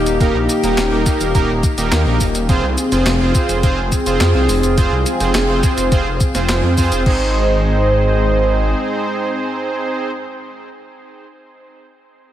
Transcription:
Already playing: analog synth pad A#3 D#4 G4
0.06 detuned saw bass D#1, closed hi-hat, cabasa
0.21 detuned saw bass D#1, analog polysynth A#3 D#4 G4 A#4, kick, closed hi-hat, cabasa
0.35 detuned saw bass A#1
0.49 closed hi-hat, cabasa
0.63 detuned saw bass D#1, analog polysynth A#3 D#4 G4 A#4, closed hi-hat, cabasa
0.78 detuned saw bass D#1, snare, clap, closed hi-hat, cabasa
0.92 detuned saw bass D#1, analog polysynth A#3 D#4 G4 A#4
1.06 kick, snare, closed hi-hat, cabasa
1.21 detuned saw bass D#1, closed hi-hat, cabasa
1.35 detuned saw bass D#1, analog polysynth A#3 D#4 G4 A#4, kick, closed hi-hat, cabasa
1.49 detuned saw bass D#1
1.63 kick, closed hi-hat, cabasa
1.78 detuned saw bass D#1, analog polysynth A#3 D#4 G4 A#4, closed hi-hat, cabasa
1.92 detuned saw bass D#2, snare, clap, closed hi-hat, cabasa
2.06 detuned saw bass A#1, analog polysynth A#3 D#4 G4 A#4
2.20 detuned saw bass D#1, kick, open hi-hat, cabasa
2.35 detuned saw bass D#1, closed hi-hat, cabasa
2.49 detuned saw bass F1, analog polysynth C4 F4 G#4 C5, analog synth pad C4 F4 G#4, kick, closed hi-hat, cabasa
2.63 detuned saw bass C2
2.78 closed hi-hat, cabasa
2.92 detuned saw bass F1, analog polysynth C4 F4 G#4 C5, closed hi-hat, cabasa
3.06 detuned saw bass F1, snare, clap, closed hi-hat, cabasa
3.20 detuned saw bass F1, analog polysynth C4 F4 G#4 C5
3.35 kick, closed hi-hat, cabasa
3.49 detuned saw bass F1, closed hi-hat, cabasa
3.63 detuned saw bass F1, analog polysynth C4 F4 G#4 C5, kick, closed hi-hat, cabasa
3.78 detuned saw bass F1
3.92 kick, closed hi-hat, cabasa
4.06 detuned saw bass F1, analog polysynth C4 F4 G#4 C5, closed hi-hat, cabasa
4.20 detuned saw bass F2, snare, clap, closed hi-hat, cabasa
4.35 detuned saw bass C2, analog polysynth C4 F4 G#4 C5
4.49 detuned saw bass F1, open hi-hat, cabasa
4.63 detuned saw bass F1, closed hi-hat, cabasa
4.78 detuned saw bass F1, analog polysynth C4 F4 G#4 C5, kick, closed hi-hat, cabasa
4.92 detuned saw bass C2
5.06 closed hi-hat, cabasa
5.20 detuned saw bass F1, analog polysynth C4 F4 G#4 C5, closed hi-hat, cabasa
5.35 detuned saw bass F1, snare, clap, closed hi-hat, cabasa
5.49 detuned saw bass F1, analog polysynth C4 F4 G#4 C5
5.63 kick, snare, closed hi-hat, cabasa
5.78 detuned saw bass F1, closed hi-hat, cabasa
5.92 detuned saw bass F1, analog polysynth C4 F4 G#4 C5, kick, closed hi-hat, cabasa
6.06 detuned saw bass F1
6.20 kick, closed hi-hat, cabasa
6.35 detuned saw bass F1, analog polysynth C4 F4 G#4 C5, snare, closed hi-hat, cabasa
6.49 detuned saw bass F1, snare, clap, closed hi-hat, cabasa
6.63 detuned saw bass F2
6.78 detuned saw bass F2, analog polysynth C4 F4 G#4 C5, kick, open hi-hat, cabasa
6.92 detuned saw bass F1, closed hi-hat, cabasa
7.06 detuned saw bass G#1, analog synth pad G#3 G#4 C5 D#5, analog polysynth C4 D#4 G#4 C5, kick, crash

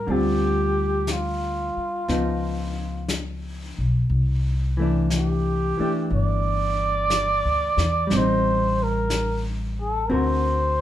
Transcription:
Already playing: trumpet A#4
0.07 upright bass D2, hollow-body jazz guitar D3 G3 C4, brush sweep
0.11 hollow-body jazz guitar F4, trumpet G4
1.07 brush sweep, snare, hi-hat pedal
1.12 trumpet F4
1.76 muted upright bass stroke
2.08 upright bass C#2, hollow-body jazz guitar F3 B3 D#4, brush sweep, snare
3.08 brush sweep, snare, hi-hat pedal
3.78 upright bass B1
4.10 upright bass C2, brush sweep
4.77 hollow-body jazz guitar E3 A3
4.82 hollow-body jazz guitar D4
5.10 trumpet G4, brush sweep, snare, hi-hat pedal
5.77 hollow-body jazz guitar E3 A3 D4, muted upright bass stroke
6.10 upright bass G1, brush sweep
6.15 trumpet D5
7.10 brush sweep, snare, hi-hat pedal
7.45 upright bass D2
7.77 upright bass E2, snare
8.07 upright bass A1, hollow-body jazz guitar G3, brush sweep, snare
8.13 hollow-body jazz guitar C4, trumpet C5
8.18 hollow-body jazz guitar D#4
8.83 trumpet A#4
9.10 brush sweep, snare, hi-hat pedal
9.82 trumpet A4
10.10 upright bass D2, hollow-body jazz guitar D3 C4 F#4 A#4, trumpet C5, brush sweep

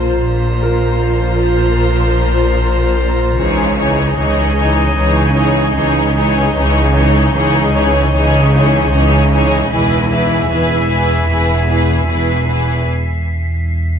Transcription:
Already playing: double bass section A#1, synth drone A#1, cello section A#2, viola section F3 F4, synth texture F4 C5 A#5, violin section A#4 C5
0.22 double bass section A#1, synth drone A#1, cello section A#2, viola section F3 F4, synth texture F4 C5 A#5, violin section A#4 C5
0.63 grand piano A#4
3.38 double bass section C#2, synth drone C#2, cello section C#3, viola section E3 D#4, synth texture D#4 D#5 G#5, violin section G#4 C#5
3.78 viola section E3 D#4, violin section G#4 C#5
4.17 double bass section C#2, cello section C#3, viola section E3 D#4, violin section G#4 C#5
4.57 viola section E3 D#4, violin section G#4 C#5
4.96 double bass section C#2, cello section C#3, viola section E3 D#4, violin section G#4 C#5
5.35 viola section E3 D#4, violin section G#4 C#5
5.76 double bass section C#2, cello section C#3, viola section E3 D#4, violin section G#4 C#5
6.15 viola section E3 D#4, violin section G#4 C#5
6.54 synth drone C#2, double bass section C#2, cello section C#3, viola section E3 D#4, synth texture D#4 D#5 G#5, violin section G#4 C#5
6.94 viola section E3 D#4, violin section G#4 C#5
7.33 double bass section C#2, cello section C#3, viola section E3 D#4, violin section G#4 C#5
7.74 viola section E3 D#4, violin section G#4 C#5, grand piano C#5
8.12 double bass section C#2, cello section C#3, viola section E3 D#4, violin section G#4 C#5
8.53 viola section E3 D#4, violin section G#4 C#5
8.91 double bass section C#2, cello section C#3, viola section E3 D#4, violin section G#4 C#5
9.33 viola section E3 D#4, violin section G#4 C#5
9.71 double bass section E1, synth drone E2, cello section E2, viola section E3 E4, synth texture E4 E5 G#5, violin section G#4 B4 B6
10.10 viola section E3 E4, violin section G#4 B4, grand piano E5
10.50 double bass section E1, cello section E2, viola section E3 E4, violin section G#4 B4 C7
10.89 viola section E3 E4, violin section G#4 B4
11.29 double bass section E1, cello section E2, viola section E3 E4, violin section G#4 B4
11.68 viola section E3 E4, violin section G#4 B4
12.08 double bass section E1, cello section E2, viola section E3 E4, violin section G#4 B4
12.48 viola section E3 E4, violin section G#4 B4
12.86 synth drone E2

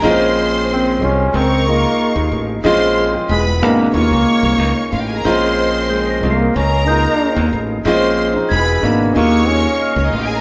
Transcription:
0.02 fingered electric bass A#1, grand piano G#3 C4 C#4 F4, flute section G#4 A#4 C5, string section C5 C6
0.72 flugelhorn C4
1.01 fingered electric bass C2, grand piano G#3 C#4 F4 C5, flugelhorn C#4
1.32 fingered electric bass C#2, flugelhorn C4, flute section F4 D#5 F5, string section A#4 C#6
1.67 grand piano G#3 A#3 D#4 F4, flugelhorn A#3
2.16 fingered electric bass D#2
2.32 fingered electric bass A1
2.64 fingered electric bass A#1, grand piano G#3 C4 C#4 F4, string section C5 C6, flute section C5
3.12 grand piano G#3 C4 C#4 F4
3.28 fingered electric bass E1, flugelhorn G#3, flute section E4 G#4 D5 F#5 G#5, string section B4 B5
3.62 fingered electric bass G#1, grand piano B2 G#3 D4 F#4, flugelhorn A#3
3.93 fingered electric bass D#2, grand piano G#3 A#3 C#4 F4, flugelhorn A#3, flute section D#4 A#4 D#5 F5, string section C#5 C#6
4.11 fingered electric bass C#2
4.43 fingered electric bass C2
4.58 fingered electric bass C#2
4.92 fingered electric bass A1, string section F4 F5
5.00 string section G4 G5
5.09 string section G#4 G#5
5.16 string section A#4 A#5
5.23 fingered electric bass A#1, grand piano G#3 C4 C#4 F4, flute section G#4, string section C5 C6
5.90 flugelhorn G#3, celesta G6
6.10 celesta A#6
6.22 fingered electric bass C2, grand piano G#3 C4 C#4 F4, flugelhorn A#3
6.31 celesta C7
6.56 fingered electric bass C#2, flute section C#4 D#5 F5, flugelhorn C#4, string section A#4 A#5
6.87 grand piano G#3 A#3 D#4 F4, flugelhorn D#4, celesta G6
7.36 fingered electric bass D#2
7.53 fingered electric bass A1
7.85 fingered electric bass A#1, grand piano G#3 C4 C#4 F4, flute section C5, string section C5 C6
8.34 grand piano G#3 C4 C#4 D#4
8.49 fingered electric bass E1, flugelhorn G#3, flute section E4 G#4 D5 F#5 G#5, string section B4 B5, celesta G#6
8.72 celesta B6
8.81 fingered electric bass G#1, grand piano B2 G#3 D4 F#4, flugelhorn A#3
9.13 fingered electric bass D#2, grand piano G#3 A#3 C#4 F4, flugelhorn A#3, flute section D#4 A#4 D#5 F5, string section C#5 C#6
9.49 flugelhorn C#4
9.83 celesta F6
9.96 fingered electric bass C#2, string section C#4 C#5
10.04 string section D#4 D#5
10.12 fingered electric bass A1, string section F4 F5
10.20 string section G4 G5
10.26 string section G#4 G#5
10.36 string section A#4 A#5

